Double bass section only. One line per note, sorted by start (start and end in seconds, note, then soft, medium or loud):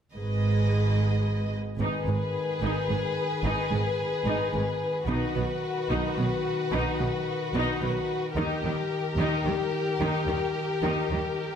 0.14 1.55 G#1 soft
1.79 1.87 G#1 soft
2.06 2.14 G#1 soft
2.62 2.70 G#1 soft
2.89 2.97 G#1 soft
3.43 3.51 G#1 soft
3.71 3.79 G#1 soft
4.25 4.33 G#1 soft
4.53 4.61 G#1 soft
5.07 5.15 B1 soft
5.35 5.43 B1 soft
5.90 5.98 B1 soft
6.18 6.26 B1 soft
6.73 6.81 B1 medium
6.99 7.07 B1 soft
7.53 7.61 B1 medium
7.82 7.90 B1 soft
8.35 8.43 D#2 medium
8.63 8.71 D#2 soft
9.17 9.25 D#2 soft
9.44 9.52 D#2 soft
10.00 10.08 D#2 soft
10.26 10.34 D#2 soft
10.82 10.90 D#2 medium
11.10 11.18 D#2 soft